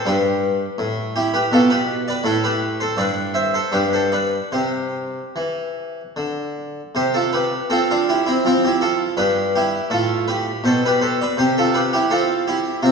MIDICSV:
0, 0, Header, 1, 2, 480
1, 0, Start_track
1, 0, Key_signature, 0, "major"
1, 0, Tempo, 725514
1, 44, Time_signature, 3, 2, 24, 8
1, 1965, Tempo, 757576
1, 2445, Tempo, 810811
1, 3885, Tempo, 774194
1, 4845, Tempo, 729927
1, 8269, End_track
2, 0, Start_track
2, 0, Title_t, "Harpsichord"
2, 0, Program_c, 0, 6
2, 37, Note_on_c, 0, 43, 78
2, 43, Note_on_c, 0, 71, 99
2, 53, Note_on_c, 0, 67, 86
2, 423, Note_off_c, 0, 43, 0
2, 519, Note_on_c, 0, 45, 65
2, 657, Note_off_c, 0, 71, 0
2, 743, Note_off_c, 0, 67, 0
2, 766, Note_on_c, 0, 67, 97
2, 774, Note_on_c, 0, 64, 70
2, 883, Note_off_c, 0, 64, 0
2, 884, Note_off_c, 0, 67, 0
2, 885, Note_on_c, 0, 71, 98
2, 892, Note_on_c, 0, 67, 66
2, 909, Note_off_c, 0, 45, 0
2, 1002, Note_off_c, 0, 67, 0
2, 1004, Note_on_c, 0, 47, 70
2, 1007, Note_off_c, 0, 71, 0
2, 1012, Note_on_c, 0, 69, 106
2, 1019, Note_on_c, 0, 65, 82
2, 1126, Note_off_c, 0, 65, 0
2, 1126, Note_on_c, 0, 71, 91
2, 1131, Note_off_c, 0, 69, 0
2, 1137, Note_on_c, 0, 67, 75
2, 1330, Note_off_c, 0, 71, 0
2, 1355, Note_off_c, 0, 67, 0
2, 1375, Note_on_c, 0, 74, 98
2, 1387, Note_off_c, 0, 47, 0
2, 1389, Note_on_c, 0, 71, 75
2, 1480, Note_on_c, 0, 45, 67
2, 1489, Note_off_c, 0, 71, 0
2, 1490, Note_off_c, 0, 74, 0
2, 1492, Note_on_c, 0, 69, 107
2, 1496, Note_on_c, 0, 64, 76
2, 1601, Note_off_c, 0, 64, 0
2, 1607, Note_off_c, 0, 69, 0
2, 1614, Note_on_c, 0, 71, 94
2, 1621, Note_on_c, 0, 67, 69
2, 1836, Note_off_c, 0, 67, 0
2, 1848, Note_off_c, 0, 71, 0
2, 1855, Note_on_c, 0, 72, 96
2, 1865, Note_on_c, 0, 69, 69
2, 1866, Note_off_c, 0, 45, 0
2, 1965, Note_on_c, 0, 43, 66
2, 1968, Note_off_c, 0, 69, 0
2, 1969, Note_on_c, 0, 74, 98
2, 1971, Note_off_c, 0, 72, 0
2, 1980, Note_on_c, 0, 71, 71
2, 2194, Note_off_c, 0, 71, 0
2, 2200, Note_on_c, 0, 76, 80
2, 2204, Note_off_c, 0, 74, 0
2, 2205, Note_on_c, 0, 72, 71
2, 2316, Note_off_c, 0, 72, 0
2, 2322, Note_off_c, 0, 76, 0
2, 2328, Note_on_c, 0, 72, 79
2, 2334, Note_on_c, 0, 69, 57
2, 2349, Note_off_c, 0, 43, 0
2, 2439, Note_on_c, 0, 43, 58
2, 2443, Note_off_c, 0, 69, 0
2, 2443, Note_on_c, 0, 71, 86
2, 2447, Note_off_c, 0, 72, 0
2, 2452, Note_on_c, 0, 67, 69
2, 2557, Note_off_c, 0, 67, 0
2, 2560, Note_off_c, 0, 71, 0
2, 2565, Note_on_c, 0, 72, 77
2, 2573, Note_on_c, 0, 69, 60
2, 2676, Note_off_c, 0, 69, 0
2, 2677, Note_on_c, 0, 74, 74
2, 2680, Note_off_c, 0, 72, 0
2, 2684, Note_on_c, 0, 71, 55
2, 2820, Note_off_c, 0, 43, 0
2, 2904, Note_off_c, 0, 71, 0
2, 2915, Note_on_c, 0, 48, 52
2, 2916, Note_on_c, 0, 72, 68
2, 2917, Note_off_c, 0, 74, 0
2, 2927, Note_on_c, 0, 67, 55
2, 3307, Note_off_c, 0, 48, 0
2, 3410, Note_on_c, 0, 52, 53
2, 3793, Note_off_c, 0, 52, 0
2, 3887, Note_on_c, 0, 50, 51
2, 4116, Note_off_c, 0, 67, 0
2, 4135, Note_off_c, 0, 72, 0
2, 4280, Note_off_c, 0, 50, 0
2, 4374, Note_on_c, 0, 48, 65
2, 4381, Note_on_c, 0, 67, 90
2, 4381, Note_on_c, 0, 72, 103
2, 4489, Note_off_c, 0, 67, 0
2, 4493, Note_on_c, 0, 69, 94
2, 4496, Note_off_c, 0, 72, 0
2, 4506, Note_on_c, 0, 65, 67
2, 4609, Note_on_c, 0, 71, 86
2, 4610, Note_off_c, 0, 65, 0
2, 4611, Note_off_c, 0, 69, 0
2, 4618, Note_on_c, 0, 67, 70
2, 4751, Note_off_c, 0, 48, 0
2, 4810, Note_off_c, 0, 71, 0
2, 4833, Note_off_c, 0, 67, 0
2, 4839, Note_on_c, 0, 60, 74
2, 4841, Note_on_c, 0, 69, 101
2, 4854, Note_on_c, 0, 65, 82
2, 4965, Note_off_c, 0, 65, 0
2, 4967, Note_off_c, 0, 69, 0
2, 4976, Note_on_c, 0, 65, 89
2, 4980, Note_on_c, 0, 62, 70
2, 5089, Note_off_c, 0, 62, 0
2, 5096, Note_off_c, 0, 65, 0
2, 5097, Note_on_c, 0, 67, 91
2, 5100, Note_on_c, 0, 64, 65
2, 5202, Note_off_c, 0, 64, 0
2, 5210, Note_on_c, 0, 64, 90
2, 5212, Note_off_c, 0, 60, 0
2, 5216, Note_off_c, 0, 67, 0
2, 5220, Note_on_c, 0, 60, 69
2, 5330, Note_off_c, 0, 60, 0
2, 5333, Note_off_c, 0, 64, 0
2, 5333, Note_on_c, 0, 53, 72
2, 5341, Note_on_c, 0, 65, 100
2, 5346, Note_on_c, 0, 60, 85
2, 5453, Note_off_c, 0, 60, 0
2, 5459, Note_off_c, 0, 65, 0
2, 5462, Note_on_c, 0, 67, 98
2, 5476, Note_on_c, 0, 64, 74
2, 5571, Note_on_c, 0, 69, 98
2, 5579, Note_off_c, 0, 64, 0
2, 5580, Note_off_c, 0, 67, 0
2, 5580, Note_on_c, 0, 65, 70
2, 5722, Note_off_c, 0, 53, 0
2, 5780, Note_off_c, 0, 69, 0
2, 5805, Note_off_c, 0, 65, 0
2, 5806, Note_on_c, 0, 43, 68
2, 5808, Note_on_c, 0, 71, 109
2, 5822, Note_on_c, 0, 67, 81
2, 6045, Note_off_c, 0, 67, 0
2, 6055, Note_off_c, 0, 71, 0
2, 6059, Note_on_c, 0, 67, 98
2, 6068, Note_on_c, 0, 64, 81
2, 6195, Note_off_c, 0, 43, 0
2, 6286, Note_off_c, 0, 64, 0
2, 6288, Note_on_c, 0, 45, 72
2, 6292, Note_on_c, 0, 69, 102
2, 6298, Note_off_c, 0, 67, 0
2, 6308, Note_on_c, 0, 65, 88
2, 6498, Note_off_c, 0, 69, 0
2, 6526, Note_off_c, 0, 65, 0
2, 6534, Note_on_c, 0, 71, 91
2, 6545, Note_on_c, 0, 67, 77
2, 6677, Note_off_c, 0, 45, 0
2, 6767, Note_off_c, 0, 67, 0
2, 6772, Note_on_c, 0, 47, 79
2, 6778, Note_off_c, 0, 71, 0
2, 6781, Note_on_c, 0, 72, 124
2, 6791, Note_on_c, 0, 69, 86
2, 6899, Note_off_c, 0, 69, 0
2, 6902, Note_off_c, 0, 72, 0
2, 6915, Note_on_c, 0, 71, 102
2, 6926, Note_on_c, 0, 67, 83
2, 7018, Note_on_c, 0, 72, 93
2, 7025, Note_on_c, 0, 69, 82
2, 7026, Note_off_c, 0, 67, 0
2, 7028, Note_off_c, 0, 71, 0
2, 7134, Note_off_c, 0, 69, 0
2, 7139, Note_off_c, 0, 72, 0
2, 7150, Note_on_c, 0, 74, 103
2, 7158, Note_off_c, 0, 47, 0
2, 7160, Note_on_c, 0, 71, 77
2, 7255, Note_on_c, 0, 48, 80
2, 7261, Note_off_c, 0, 71, 0
2, 7262, Note_on_c, 0, 72, 114
2, 7263, Note_off_c, 0, 74, 0
2, 7271, Note_on_c, 0, 67, 88
2, 7375, Note_off_c, 0, 67, 0
2, 7378, Note_off_c, 0, 72, 0
2, 7391, Note_on_c, 0, 69, 110
2, 7399, Note_on_c, 0, 65, 83
2, 7498, Note_off_c, 0, 65, 0
2, 7500, Note_on_c, 0, 71, 97
2, 7502, Note_off_c, 0, 69, 0
2, 7509, Note_on_c, 0, 67, 74
2, 7613, Note_off_c, 0, 67, 0
2, 7616, Note_off_c, 0, 71, 0
2, 7622, Note_on_c, 0, 67, 116
2, 7632, Note_on_c, 0, 64, 82
2, 7636, Note_off_c, 0, 48, 0
2, 7734, Note_off_c, 0, 64, 0
2, 7735, Note_on_c, 0, 60, 77
2, 7737, Note_off_c, 0, 67, 0
2, 7739, Note_on_c, 0, 69, 119
2, 7746, Note_on_c, 0, 65, 77
2, 7939, Note_off_c, 0, 69, 0
2, 7962, Note_off_c, 0, 65, 0
2, 7980, Note_on_c, 0, 67, 101
2, 7988, Note_on_c, 0, 64, 79
2, 8114, Note_off_c, 0, 60, 0
2, 8178, Note_off_c, 0, 67, 0
2, 8200, Note_off_c, 0, 64, 0
2, 8210, Note_on_c, 0, 48, 87
2, 8212, Note_on_c, 0, 65, 108
2, 8224, Note_on_c, 0, 60, 84
2, 8269, Note_off_c, 0, 48, 0
2, 8269, Note_off_c, 0, 60, 0
2, 8269, Note_off_c, 0, 65, 0
2, 8269, End_track
0, 0, End_of_file